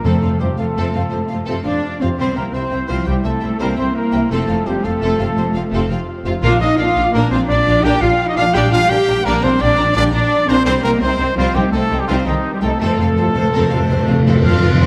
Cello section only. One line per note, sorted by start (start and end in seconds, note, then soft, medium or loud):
0.04 0.40 A3 medium
0.40 0.58 G3 medium
0.58 1.45 A3 medium
1.65 1.98 D4 medium
2.01 2.08 C4 medium
2.18 2.36 C4 medium
2.36 2.54 A#3 medium
2.54 2.89 C4 medium
2.89 3.07 F3 medium
3.06 3.25 G3 medium
3.24 3.60 A3 medium
3.60 3.78 A#3 medium
3.78 3.96 C4 medium
3.95 4.31 A#3 medium
4.31 4.67 A3 medium
4.66 4.84 G3 medium
4.83 5.72 A3 medium
6.42 6.59 F4 medium
6.61 6.78 D#4 medium
6.78 7.14 F4 medium
7.13 7.31 A#3 medium
7.31 7.49 C4 medium
7.48 7.83 D4 medium
7.84 8.02 G4 loud
8.01 8.28 F4 medium
8.28 8.37 D#4 loud
8.37 8.44 F4 medium
8.53 8.61 G4 loud
8.72 8.89 F4 loud
8.90 9.25 G4 loud
9.25 9.43 A#3 loud
9.42 9.60 C4 loud
9.61 9.94 D4 loud
9.96 10.03 D4 loud
10.13 10.48 D4 loud
10.49 10.64 C4 loud
10.65 10.73 C4 loud
10.83 11.01 A#3 medium
11.00 11.37 C4 loud
11.36 11.54 F3 medium
11.54 11.73 G3 medium
11.72 12.00 A3 medium
11.99 12.08 G3 medium
12.08 12.15 F3 medium
12.26 12.34 D#3 medium
12.53 12.62 G3 medium
12.62 12.79 A3 medium
12.80 14.41 A3 medium
14.44 14.78 F4 medium
14.81 14.86 C4 medium